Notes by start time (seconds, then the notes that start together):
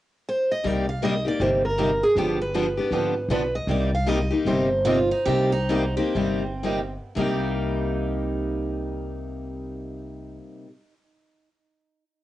0.29 C5
0.52 D#5
0.64 C2 C3 G3 A#3 D#4 G4 D5
0.89 F5
1.02 C3 G3 A#3 D#4 G4 D#5
1.25 A#3 D#4 G4 D5
1.40 G1 C3 G3 A#3 D#4 G4 C5
1.65 A#4
1.78 C3 G3 A#3 D#4 G4
2.03 G#4
2.15 G1 D3 F3 B3 D4 G4
2.41 B4
2.54 D3 F3 B3 D4 G4
2.77 B3 D4 G4
2.91 G#1 D3 F3 B3 D4 G4
3.28 B1 D3 F3 B3 D4 G4 B4
3.55 D#5
3.67 C2 C3 G3 A#3 D#4 G4 D5
3.95 F5
4.06 C3 G3 A#3 D#4 G4 D#5
4.30 A#3 D#4 G4
4.45 G1 C3 G3 A#3 D#4 G4 C5
4.85 C3 G3 A#3 D#4 F4 G4
5.11 D#4
5.25 C2 C3 G3 A#3 D#4 G4
5.52 D#4
5.69 C3 G3 A#3 D#4 G4
5.97 A#3 C4 D#4 G4
6.15 G1 C3 G3 A#3 D#4 G4
6.63 C3 G3 A#3 D#4 G4
7.15 C2 C3 G3 A#3 D#4 G4